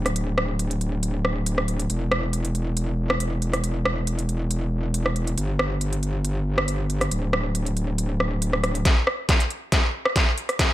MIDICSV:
0, 0, Header, 1, 3, 480
1, 0, Start_track
1, 0, Tempo, 434783
1, 176, Time_signature, 4, 2, 24, 8
1, 11851, End_track
2, 0, Start_track
2, 0, Title_t, "Wobble bass"
2, 0, Program_c, 0, 39
2, 0, Note_on_c, 0, 26, 90
2, 2072, Note_off_c, 0, 26, 0
2, 2095, Note_on_c, 0, 28, 83
2, 5913, Note_off_c, 0, 28, 0
2, 5936, Note_on_c, 0, 31, 88
2, 7833, Note_off_c, 0, 31, 0
2, 7854, Note_on_c, 0, 26, 86
2, 9752, Note_off_c, 0, 26, 0
2, 11851, End_track
3, 0, Start_track
3, 0, Title_t, "Drums"
3, 63, Note_on_c, 9, 37, 50
3, 63, Note_on_c, 9, 42, 53
3, 173, Note_off_c, 9, 37, 0
3, 173, Note_off_c, 9, 42, 0
3, 175, Note_on_c, 9, 42, 73
3, 286, Note_off_c, 9, 42, 0
3, 416, Note_on_c, 9, 37, 71
3, 526, Note_off_c, 9, 37, 0
3, 656, Note_on_c, 9, 42, 73
3, 766, Note_off_c, 9, 42, 0
3, 783, Note_on_c, 9, 42, 50
3, 893, Note_off_c, 9, 42, 0
3, 896, Note_on_c, 9, 42, 50
3, 1006, Note_off_c, 9, 42, 0
3, 1135, Note_on_c, 9, 42, 75
3, 1246, Note_off_c, 9, 42, 0
3, 1377, Note_on_c, 9, 37, 58
3, 1487, Note_off_c, 9, 37, 0
3, 1616, Note_on_c, 9, 42, 79
3, 1727, Note_off_c, 9, 42, 0
3, 1743, Note_on_c, 9, 37, 53
3, 1854, Note_off_c, 9, 37, 0
3, 1856, Note_on_c, 9, 42, 49
3, 1966, Note_off_c, 9, 42, 0
3, 1982, Note_on_c, 9, 42, 50
3, 2093, Note_off_c, 9, 42, 0
3, 2095, Note_on_c, 9, 42, 69
3, 2206, Note_off_c, 9, 42, 0
3, 2335, Note_on_c, 9, 37, 79
3, 2445, Note_off_c, 9, 37, 0
3, 2574, Note_on_c, 9, 42, 70
3, 2685, Note_off_c, 9, 42, 0
3, 2701, Note_on_c, 9, 42, 50
3, 2812, Note_off_c, 9, 42, 0
3, 2815, Note_on_c, 9, 42, 48
3, 2925, Note_off_c, 9, 42, 0
3, 3055, Note_on_c, 9, 42, 73
3, 3165, Note_off_c, 9, 42, 0
3, 3422, Note_on_c, 9, 37, 80
3, 3532, Note_off_c, 9, 37, 0
3, 3535, Note_on_c, 9, 42, 74
3, 3646, Note_off_c, 9, 42, 0
3, 3775, Note_on_c, 9, 42, 49
3, 3886, Note_off_c, 9, 42, 0
3, 3902, Note_on_c, 9, 37, 56
3, 3902, Note_on_c, 9, 42, 47
3, 4012, Note_off_c, 9, 37, 0
3, 4012, Note_off_c, 9, 42, 0
3, 4015, Note_on_c, 9, 42, 70
3, 4125, Note_off_c, 9, 42, 0
3, 4255, Note_on_c, 9, 37, 78
3, 4366, Note_off_c, 9, 37, 0
3, 4495, Note_on_c, 9, 42, 71
3, 4606, Note_off_c, 9, 42, 0
3, 4622, Note_on_c, 9, 42, 49
3, 4732, Note_off_c, 9, 42, 0
3, 4735, Note_on_c, 9, 42, 48
3, 4846, Note_off_c, 9, 42, 0
3, 4975, Note_on_c, 9, 42, 72
3, 5085, Note_off_c, 9, 42, 0
3, 5456, Note_on_c, 9, 42, 74
3, 5566, Note_off_c, 9, 42, 0
3, 5583, Note_on_c, 9, 37, 53
3, 5693, Note_off_c, 9, 37, 0
3, 5695, Note_on_c, 9, 42, 46
3, 5806, Note_off_c, 9, 42, 0
3, 5822, Note_on_c, 9, 42, 49
3, 5933, Note_off_c, 9, 42, 0
3, 5935, Note_on_c, 9, 42, 73
3, 6045, Note_off_c, 9, 42, 0
3, 6175, Note_on_c, 9, 37, 76
3, 6285, Note_off_c, 9, 37, 0
3, 6415, Note_on_c, 9, 42, 71
3, 6526, Note_off_c, 9, 42, 0
3, 6543, Note_on_c, 9, 42, 52
3, 6653, Note_off_c, 9, 42, 0
3, 6655, Note_on_c, 9, 42, 48
3, 6765, Note_off_c, 9, 42, 0
3, 6895, Note_on_c, 9, 42, 70
3, 7006, Note_off_c, 9, 42, 0
3, 7262, Note_on_c, 9, 37, 81
3, 7373, Note_off_c, 9, 37, 0
3, 7374, Note_on_c, 9, 42, 77
3, 7485, Note_off_c, 9, 42, 0
3, 7615, Note_on_c, 9, 42, 50
3, 7725, Note_off_c, 9, 42, 0
3, 7741, Note_on_c, 9, 37, 51
3, 7741, Note_on_c, 9, 42, 49
3, 7851, Note_off_c, 9, 37, 0
3, 7851, Note_off_c, 9, 42, 0
3, 7854, Note_on_c, 9, 42, 77
3, 7965, Note_off_c, 9, 42, 0
3, 8094, Note_on_c, 9, 37, 75
3, 8205, Note_off_c, 9, 37, 0
3, 8334, Note_on_c, 9, 42, 77
3, 8445, Note_off_c, 9, 42, 0
3, 8461, Note_on_c, 9, 42, 54
3, 8572, Note_off_c, 9, 42, 0
3, 8574, Note_on_c, 9, 42, 53
3, 8684, Note_off_c, 9, 42, 0
3, 8814, Note_on_c, 9, 42, 79
3, 8924, Note_off_c, 9, 42, 0
3, 9054, Note_on_c, 9, 37, 55
3, 9165, Note_off_c, 9, 37, 0
3, 9295, Note_on_c, 9, 42, 81
3, 9405, Note_off_c, 9, 42, 0
3, 9421, Note_on_c, 9, 37, 50
3, 9531, Note_off_c, 9, 37, 0
3, 9534, Note_on_c, 9, 37, 61
3, 9534, Note_on_c, 9, 42, 50
3, 9644, Note_off_c, 9, 37, 0
3, 9644, Note_off_c, 9, 42, 0
3, 9661, Note_on_c, 9, 42, 51
3, 9771, Note_off_c, 9, 42, 0
3, 9773, Note_on_c, 9, 38, 44
3, 9773, Note_on_c, 9, 42, 75
3, 9774, Note_on_c, 9, 36, 94
3, 9884, Note_off_c, 9, 36, 0
3, 9884, Note_off_c, 9, 38, 0
3, 9884, Note_off_c, 9, 42, 0
3, 10014, Note_on_c, 9, 37, 70
3, 10124, Note_off_c, 9, 37, 0
3, 10254, Note_on_c, 9, 36, 92
3, 10254, Note_on_c, 9, 38, 50
3, 10254, Note_on_c, 9, 42, 76
3, 10364, Note_off_c, 9, 36, 0
3, 10364, Note_off_c, 9, 38, 0
3, 10364, Note_off_c, 9, 42, 0
3, 10381, Note_on_c, 9, 42, 52
3, 10491, Note_off_c, 9, 42, 0
3, 10493, Note_on_c, 9, 42, 53
3, 10603, Note_off_c, 9, 42, 0
3, 10733, Note_on_c, 9, 38, 51
3, 10733, Note_on_c, 9, 42, 77
3, 10734, Note_on_c, 9, 36, 99
3, 10843, Note_off_c, 9, 38, 0
3, 10843, Note_off_c, 9, 42, 0
3, 10844, Note_off_c, 9, 36, 0
3, 11100, Note_on_c, 9, 37, 77
3, 11211, Note_off_c, 9, 37, 0
3, 11213, Note_on_c, 9, 36, 97
3, 11214, Note_on_c, 9, 38, 59
3, 11214, Note_on_c, 9, 42, 86
3, 11324, Note_off_c, 9, 36, 0
3, 11325, Note_off_c, 9, 38, 0
3, 11325, Note_off_c, 9, 42, 0
3, 11454, Note_on_c, 9, 42, 52
3, 11565, Note_off_c, 9, 42, 0
3, 11581, Note_on_c, 9, 37, 50
3, 11581, Note_on_c, 9, 42, 53
3, 11691, Note_off_c, 9, 37, 0
3, 11691, Note_off_c, 9, 42, 0
3, 11694, Note_on_c, 9, 36, 91
3, 11695, Note_on_c, 9, 38, 57
3, 11695, Note_on_c, 9, 42, 84
3, 11804, Note_off_c, 9, 36, 0
3, 11805, Note_off_c, 9, 38, 0
3, 11805, Note_off_c, 9, 42, 0
3, 11851, End_track
0, 0, End_of_file